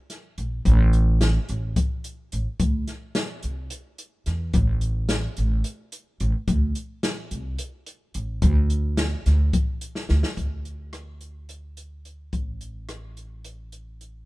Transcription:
0.10 snare, closed hi-hat
0.38 upright bass A#1, closed hi-hat
0.65 upright bass A1, kick, closed hi-hat
0.93 closed hi-hat
1.21 snare, closed hi-hat
1.49 upright bass A1, closed hi-hat
1.76 kick, closed hi-hat
2.04 closed hi-hat
2.32 upright bass A1, closed hi-hat
2.60 upright bass D2, kick, closed hi-hat
2.88 snare, closed hi-hat
3.15 snare, closed hi-hat
3.43 upright bass C2, closed hi-hat
3.70 closed hi-hat
3.98 closed hi-hat
4.26 upright bass E2, snare, closed hi-hat
4.53 upright bass A1, kick, closed hi-hat
4.81 closed hi-hat
5.09 snare, closed hi-hat
5.37 upright bass A1, closed hi-hat
5.64 closed hi-hat
5.92 closed hi-hat
6.20 upright bass A1, closed hi-hat
6.48 upright bass D2, kick, closed hi-hat
6.75 closed hi-hat
7.03 snare, closed hi-hat
7.31 upright bass C2, closed hi-hat
7.59 closed hi-hat
7.86 closed hi-hat
8.14 upright bass A1, closed hi-hat
8.42 upright bass D2, kick, closed hi-hat
8.70 closed hi-hat
8.97 snare, closed hi-hat
9.26 upright bass D2, snare, closed hi-hat
9.53 kick, closed hi-hat
9.81 closed hi-hat
9.95 snare
10.09 upright bass D2, snare
10.23 snare
10.37 upright bass D2, kick, closed hi-hat
10.65 closed hi-hat
10.93 cross-stick, closed hi-hat
11.21 closed hi-hat
11.49 closed hi-hat
11.77 closed hi-hat
12.05 closed hi-hat
12.33 upright bass A1, kick, closed hi-hat
12.61 closed hi-hat
12.89 cross-stick, closed hi-hat
13.17 closed hi-hat
13.45 closed hi-hat
13.72 closed hi-hat
14.01 closed hi-hat

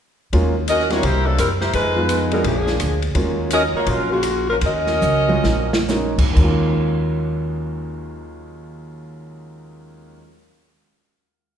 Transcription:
0.33 upright bass D#2, grand piano F#3 G#3 A#3 C#4 F4, kick, ride
0.68 saxophone section C#4 F#4 A#4 D#5, hi-hat pedal, ride
0.80 snare
0.90 grand piano G3 A#3 C4 D4 E4, saxophone section A#3 F4 F#4 C#5, snare, ride
1.03 upright bass C2, saxophone section A#3 E4 G4 C5, kick, ride
1.26 saxophone section F#3 A#3 D4 A4
1.38 upright bass F#2, saxophone section G3 C4 E4 A#4, cross-stick, hi-hat pedal, ride
1.61 saxophone section A#3 E4 G4 C5, snare
1.73 upright bass F2, saxophone section G#3 D#4 F4 B4, kick, ride
1.96 grand piano F3 G#3 B3 D#4 F4
2.09 hi-hat pedal, ride
2.31 grand piano F3 G#3 A#3 D4 G#4, saxophone section F#3 B3 D#4 A#4, ride
2.44 upright bass A#1, saxophone section F3 A#3 D4 G#4, kick, ride
2.67 snare
2.80 upright bass D2, cross-stick, hi-hat pedal, ride
3.02 ride
3.15 upright bass D#2, grand piano F#3 G#3 A#3 C#4 F4, kick, ride
3.51 saxophone section C#4 F#4 A#4 D#5, hi-hat pedal, ride
3.73 saxophone section A#3 F4 F#4 C#5, muted upright bass stroke
3.87 upright bass A#1, saxophone section F#3 C#4 F4 A#4, kick, ride
4.12 saxophone section C#3 A#3 F4 F#4
4.23 cross-stick, hi-hat pedal, ride
4.50 saxophone section F#3 C#4 F4 A#4
4.61 upright bass D#2, saxophone section C#4 F#4 A#4 D#5, kick, ride
4.87 snare
5.01 upright bass C#2, hi-hat pedal, high tom
5.28 grand piano F#3 G#3 A#3 C#4 F4, high tom
5.44 upright bass A#1, snare
5.73 snare
5.88 grand piano F#3 G#3 A#3 C#4 D#4, snare, hi-hat pedal
6.18 upright bass E2, kick, crash
6.32 grand piano D#2 D#3
6.36 upright bass D#2, grand piano F#3 G#3, kick, crash
6.41 grand piano C#4 F4

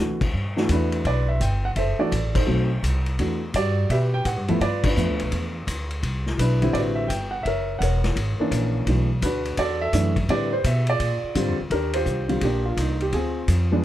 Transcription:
Already playing: upright bass D2, grand piano C4 A4
0.00 grand piano E3 A3 D4 F#4
0.21 kick, crash
0.34 upright bass G2, kick
0.57 grand piano E3 A3 D4 F#4, snare
0.69 upright bass E2, grand piano E4 B4, kick, hi-hat pedal, ride
0.73 grand piano D4
0.92 ride
1.05 upright bass B1, grand piano B4 D5, kick, ride
1.29 grand piano E5
1.40 upright bass G1, grand piano G5, kick, hi-hat pedal, ride
1.65 grand piano F#5
1.76 upright bass F#1, grand piano A4 C5 E5, kick, ride
1.99 grand piano E3 A3 D4 F#4 A4 D5, muted upright bass stroke
2.11 upright bass A1, kick, hi-hat pedal, ride
2.35 grand piano D#4 A4 C5, kick, crash
2.47 upright bass B1, grand piano F#3 A3 C4 D#4
2.83 upright bass C2, kick, hi-hat pedal, ride
3.06 ride
3.18 upright bass E2, grand piano E3 A3 D4 F#4, kick, ride
3.54 upright bass G2, grand piano F#4 G4 D5, kick, hi-hat pedal, ride
3.89 upright bass B2, grand piano G4 B4 E5, kick, ride
4.14 grand piano G5
4.25 upright bass A2, grand piano F#5, kick, hi-hat pedal, ride
4.37 upright bass G2
4.48 upright bass E2, grand piano F3 A3 B3 E4 E5, ride
4.60 upright bass G2, grand piano F4 B4 D5, kick, ride
4.84 grand piano D4 F4 B4, kick, crash
4.96 upright bass F2, grand piano F3 A3 B3 E5, hi-hat pedal
5.09 upright bass D2
5.20 upright bass B1, ride
5.32 upright bass E2, kick, ride
5.67 upright bass D2, kick, hi-hat pedal, ride
5.91 ride
6.02 upright bass C2, kick, ride
6.26 snare
6.38 upright bass B1, grand piano D4 E4 B4, kick, hi-hat pedal, ride
6.62 grand piano D3 G3 C4 E4, ride
6.73 upright bass A1, grand piano F#4 B4 D5, kick, ride
6.95 grand piano E5
7.08 upright bass G1, grand piano G5, kick, hi-hat pedal, ride
7.31 grand piano F#5
7.43 upright bass F#1, grand piano E5, kick, ride
7.47 grand piano A#4 C#5
7.79 upright bass E1, grand piano C#5 F#5, kick, hi-hat pedal, ride
7.83 grand piano A#4
8.04 snare, ride
8.16 upright bass G#1, kick, ride
8.38 grand piano E3 A#3 C#4 D4, muted upright bass stroke
8.51 upright bass A#1, kick, hi-hat pedal, ride
8.86 upright bass B1, grand piano E3 A3 D4 F#4, kick, ride
9.22 upright bass D2, grand piano D4 F#4 B4, kick, hi-hat pedal, ride
9.45 ride
9.57 upright bass E2, grand piano F#4 A4 D5, kick, ride
9.81 grand piano A4 E5
9.93 upright bass F#2, grand piano E3 A3 D4 A4, kick, hi-hat pedal, ride
10.16 kick, ride
10.28 upright bass A2, grand piano D3 G3 C4 E4 G4 B4 D5, kick, ride
10.53 grand piano C5
10.64 upright bass B2, grand piano E5, kick, hi-hat pedal, ride
10.87 grand piano F4 G#4 D5, ride
10.99 upright bass A#2, kick, ride
11.23 muted upright bass stroke
11.35 upright bass G#2, grand piano D3 G3 C4 F4, kick, hi-hat pedal, ride
11.48 upright bass F2
11.60 upright bass D2
11.70 upright bass D#2, grand piano D4 G4 A#4, kick, ride
11.93 grand piano F4 G4 C5, ride
12.05 upright bass C2, kick, hi-hat pedal
12.29 grand piano D3 G3 C4 F4, ride
12.41 upright bass A#1, grand piano A#3 D4 G4, kick, ride
12.66 grand piano F4
12.77 upright bass C2, grand piano D#4, kick, hi-hat pedal, ride
13.01 grand piano G4, ride
13.12 upright bass D2, grand piano C4 F4 G#4, kick, ride
13.48 upright bass F2, kick, hi-hat pedal, ride
13.72 grand piano F3 G#3 B3 D4

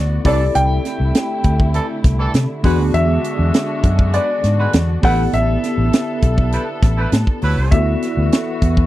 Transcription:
Already playing: fingered electric bass D2, string section E3 B3 F#4, tine electric piano B3 E4 F#4 A4 D5, grand piano D5
0.24 fingered electric bass C2, string section D3 A3 E4, horn section E3 D4 A4, tine electric piano C4 E4 G4 A4 C#5, grand piano D5, kick, open hi-hat
0.32 tine electric piano D5
0.55 fingered electric bass C2, grand piano G5, closed hi-hat
0.85 snare, closed hi-hat
1.00 fingered electric bass C2
1.15 snare, closed hi-hat
1.44 fingered electric bass D2, kick, closed hi-hat
1.60 kick
1.74 horn section E3 D4 A4, closed hi-hat
2.04 fingered electric bass C2, kick, snare, closed hi-hat
2.19 horn section E3 D4 A4
2.34 fingered electric bass C3, snare, closed hi-hat
2.63 fingered electric bass E2, string section G#3 D4 F#4, horn section G#3 F#4 B4, tine electric piano B3 D4 F#4 G#4 D5, kick, open hi-hat
2.79 fingered electric bass D2
2.94 fingered electric bass E2, grand piano E5, closed hi-hat
3.24 closed hi-hat
3.39 fingered electric bass E2
3.54 snare, closed hi-hat
3.83 fingered electric bass F#2, kick, closed hi-hat
3.99 kick
4.13 horn section G#3 F#4 B4, grand piano D5, closed hi-hat
4.44 fingered electric bass G#2, snare, closed hi-hat
4.59 horn section G#3 F#4 B4
4.73 fingered electric bass E2, snare, closed hi-hat
5.02 fingered electric bass A1, horn section G3 E4 B4, tine electric piano B3 E4 G4 A4 D5, string section B3 A4, grand piano F#5, kick, open hi-hat
5.33 fingered electric bass A1, grand piano E5, closed hi-hat
5.64 snare, closed hi-hat
5.78 fingered electric bass A1
5.93 snare, closed hi-hat
6.22 fingered electric bass B1, kick, closed hi-hat
6.38 kick
6.52 horn section G3 E4 B4, closed hi-hat
6.83 fingered electric bass A1, kick, snare, closed hi-hat
6.98 horn section G3 E4 B4
7.12 fingered electric bass A2, snare, closed hi-hat
7.27 kick
7.42 fingered electric bass D2, horn section F#3 E4 B4, open hi-hat
7.57 fingered electric bass C2
7.71 fingered electric bass D2, string section E3 B3 F#4, tine electric piano B3 E4 F#4 A4 D5, grand piano E5, kick, closed hi-hat
8.02 snare, closed hi-hat
8.17 fingered electric bass D2
8.32 snare, closed hi-hat
8.62 fingered electric bass E2, kick, closed hi-hat
8.77 kick

